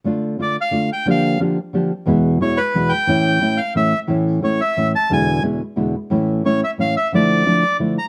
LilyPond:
<<
  \new Staff \with { instrumentName = "Bandoneon" } { \time 3/4 \key d \minor \tempo 4 = 178 r4 d''8 f''4 g''8 | f''4 r2 | r4 cis''8 b'4 g''8~ | g''4. f''8 e''8. r16 |
r4 cis''8 e''4 a''8 | gis''4 r2 | r4 cis''8 e''8 f''8 e''8 | d''2 r8 bes''8 | }
  \new Staff \with { instrumentName = "Nylon-string guitar" } { \time 3/4 \key d \minor <d a d' f'>4 <d a d' f'>8 r8 <d a d' f'>8 r8 | <d f bes d' g'>4 <d f bes d' g'>8 r8 <d f bes d' g'>8 r8 | <e, b, e gis b e'>4 <e, b, e gis b e'>8 r8 <e, b, e gis b e'>8 r8 | <a, e a cis' e'>4 <a, e a cis' e'>8 r8 <a, e a cis' e'>8 r8 |
<a, e a cis' e'>4 <a, e a cis' e'>8 r8 <a, e a cis' e'>8 r8 | <e, b, d gis b e'>4 <e, b, d gis b e'>8 r8 <e, b, d gis b e'>8 r8 | <a, e a cis' e'>4 <a, e a cis' e'>8 r8 <a, e a cis' e'>8 r8 | <d f a d' e'>4 <d f a d' e'>8 r8 <d f a d' e'>8 r8 | }
>>